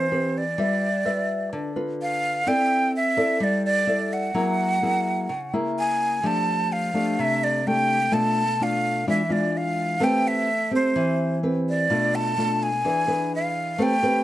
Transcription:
Already playing: E3 C5
0.11 C4 G4 B4
0.38 D5
0.58 G3 F4 B4 E5
1.05 F4 B4 E5
1.53 D3
1.76 F4 B4
2.02 F5
2.47 C4 E4 A4 D5 G5
2.96 E5
3.17 E4 A4 D5
3.40 G3 D5
3.66 D5
3.87 E4 A4 D5
4.13 F#5
4.34 F#3 A#3 E4 G#4
4.82 A#3 E4 G#4
5.29 C#3
5.53 A#3 E4 G#4
5.79 G#5
6.23 F3 A3 D4 G4 A5
6.72 F5
6.94 A3 D4 G4
7.19 C3 E5
7.44 D5
7.67 A3 D4 G4 G5
8.12 B2 A3 D4 F4 A5
8.60 A3 D4 F4 F5
9.07 E3 G#3 D4 F4 E5
9.29 G#3 D4 F4 D5
9.57 F5
10.00 A3 C4 G4 B4 G5
10.28 E5
10.71 C4 G4 C5
10.96 E3
11.43 C4 G4 B4
11.69 D5
11.90 B2 A3 D4 F4
12.15 A5
12.37 A3 D4 F4
12.63 G#5
12.84 E3 D4 G#4 B4
13.07 D4 G#4 B4
13.35 F5
13.78 A3 C4 G4 B4 G5
14.02 C4 G4 B4

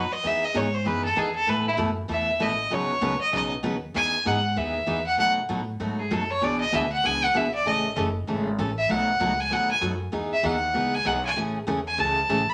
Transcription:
Already playing: F#2 B4
0.12 D#5, muted upright bass stroke
0.23 E2 E3 B3 D#4 G#4 E5
0.44 D#5
0.54 G#2 E3 B3 D#4 G#4 C#5
0.74 C5
0.85 F#2 E3 B3 D#4 G#4 B4
1.04 A4
1.16 E2 E3 B3 D#4 G#4
1.35 A4
1.47 A2 B2 E3 A3 E4 A4 B4
1.68 E4
1.77 F#2 B2 E3 A3 E4 A4
2.08 E2 B2 E3 A3 E4 A4 E5
2.40 A1 B2 E3 A3 E4 A4 D#5
2.71 B1 B2 C#3 F#3 B3 D#4 B4 C#5
3.01 C#2 B2 C#3 F#3 B3 D#4 B4
3.21 D#5, muted upright bass stroke
3.32 B1 B2 C#3 F#3 B3 D#4 B4 D#5
3.63 D#2 B2 C#3 F#3 B3 D#4 B4
3.94 E2 E3 B3 D#4 G#4 G#5
4.25 G#2 E3 B3 D#4 G#4 F#5
4.56 D#2 E3 B3 D#4 G#4 E5
4.86 E2 E3 B3 D#4 G#4
5.07 F#5
5.17 B2 F#3 A3 D#4 F#4 F#5
5.49 A2 B2 F#3 A3 D#4 F#4
5.80 G#2 B2 F#3 A3 D#4 F#4
5.99 G#4
6.11 F#2 B2 F#3 A3 D#4 F#4 A4
6.30 C#5
6.41 B1 B2 E3 B3 D4 G#4 D5
6.61 D#5
6.72 D2 B2 E3 B3 D4 G#4 E5
6.92 F#5
7.03 C#2 B2 E3 B3 D4 G#4 G#5
7.24 F#5
7.34 B1 B2 E3 B3 D4 G#4 E5
7.54 D5
7.65 A1 C#3 E3 A3 C#4 A4 D#5
7.96 F#1 C#3 E3 A3 C#4 A4
8.27 G#1 C#3 E3 A3 C#4 A4
8.58 A1 C#3 E3 A3 C#4 A4
8.78 E5
8.89 B1 B2 F#3 A3 D#4 F#4 F#5
9.20 C#2 B2 F#3 A3 D#4 F#4
9.40 G#5
9.50 D#2 B2 F#3 A3 D#4 F#4 F#5
9.71 G#5
9.81 F#2 B2 F#3 A3 D#4 F#4
10.12 E2 E3 B3 D#4 G#4
10.33 E5
10.43 D#2 E3 B3 D#4 G#4 F#5
10.74 C#2 E3 B3 D#4 G#4
10.94 G#5
11.05 B1 E3 B3 D#4 G#4 F#5
11.25 G#5
11.36 A1 C#3 E3 A3 C#4 G#4
11.67 E2 C#3 E3 A3 C#4 G#4
11.88 G#5
11.98 C#2 C#3 E3 A3 C#4 G#4 A5
12.29 A1 C#3 E3 A3 C#4 G#4
12.49 B5, muted upright bass stroke

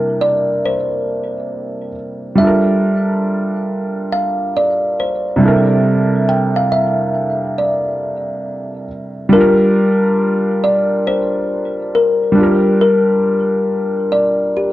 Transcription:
Already playing: C3 G3 A#3 D4 E4 A#4
0.21 D5
0.66 C5
2.35 G3 D4 E5
2.41 F4 A4
2.47 A#4
4.12 F5
4.57 D5
5.00 C5
5.36 C3 G3
5.41 D4 E4
5.45 A4 A#4
6.29 G5
6.56 F5
6.72 E5
7.58 D5
9.29 G3 D4 A#4
9.35 F4 G4
9.41 A#4
10.64 D5
11.07 C5
11.95 A#4
12.32 G3 D4
12.38 F4 G4
12.43 A#4
12.81 A#4
14.12 D5
14.57 G4

